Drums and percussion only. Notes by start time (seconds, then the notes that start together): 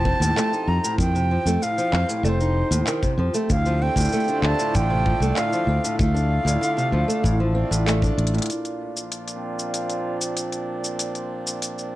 0.05 kick
0.22 shaker
0.37 clap, shaker
0.53 shaker
0.84 shaker
0.98 kick, shaker
1.16 shaker
1.47 shaker
1.62 shaker
1.78 shaker
1.93 clap
2.09 shaker
2.25 shaker
2.40 shaker
2.72 shaker
2.87 clap, shaker
3.03 kick, shaker
3.34 shaker
3.50 kick, shaker
3.66 shaker
3.96 kick, shaker
4.00 shaker
4.05 shaker
4.09 shaker
4.12 shaker
4.20 shaker
4.24 shaker
4.28 shaker
4.43 clap
4.59 shaker
4.75 kick, shaker
5.06 kick
5.22 shaker
5.36 clap, shaker
5.53 shaker
5.84 shaker
5.99 kick, shaker
6.16 shaker
6.47 shaker
6.63 shaker
6.78 shaker
7.10 shaker
7.24 kick, shaker
7.72 shaker
7.88 clap, shaker
8.02 kick, shaker
8.19 closed hi-hat
8.27 closed hi-hat
8.35 closed hi-hat
8.38 closed hi-hat
8.42 closed hi-hat
8.46 closed hi-hat
8.50 closed hi-hat, shaker
8.65 closed hi-hat, shaker
8.97 shaker
9.12 closed hi-hat, shaker
9.28 closed hi-hat, shaker
9.59 shaker
9.74 closed hi-hat, shaker
9.90 closed hi-hat, shaker
10.21 shaker
10.37 closed hi-hat, shaker
10.52 closed hi-hat, shaker
10.84 shaker
10.99 closed hi-hat, shaker
11.15 closed hi-hat, shaker
11.47 shaker
11.62 closed hi-hat, shaker
11.78 shaker